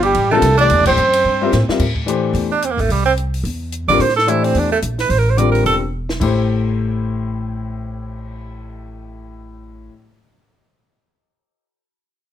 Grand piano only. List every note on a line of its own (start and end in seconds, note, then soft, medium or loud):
0.31 0.41 D3 medium
0.31 0.42 G3 medium
0.31 0.42 C4 medium
0.31 0.42 F4 medium
0.31 0.42 A#4 medium
0.59 0.95 E3 medium
0.59 0.95 A3 medium
0.59 0.96 D4 medium
0.59 0.96 G4 medium
0.59 0.96 D5 medium
1.41 1.51 G3 medium
1.41 1.51 C4 medium
1.41 1.52 F4 medium
1.41 1.52 A#4 medium
1.41 1.52 E5 medium
1.69 1.80 G3 medium
1.69 1.80 C4 medium
1.69 1.80 F4 medium
1.69 1.81 A#4 medium
1.69 1.81 E5 medium
2.06 2.47 E3 medium
2.06 2.48 A3 medium
2.06 2.48 D4 medium
2.06 2.48 G4 medium
2.06 2.48 C5 medium
3.89 3.99 D3 medium
3.89 3.99 G3 medium
3.89 3.99 C4 medium
3.89 4.00 F4 medium
3.89 4.00 A#4 medium
4.27 4.68 E3 medium
4.27 4.68 A3 medium
4.27 4.68 D4 medium
4.27 4.69 G4 soft
4.27 4.68 C5 medium
5.37 5.78 D3 medium
5.37 5.79 G3 soft
5.37 5.79 C4 soft
5.37 5.79 F4 soft
5.37 5.79 A#4 medium
6.20 9.91 A2 medium
6.20 9.91 A3 medium
6.20 9.92 E4 medium
6.20 9.92 G4 medium
6.20 9.93 C5 medium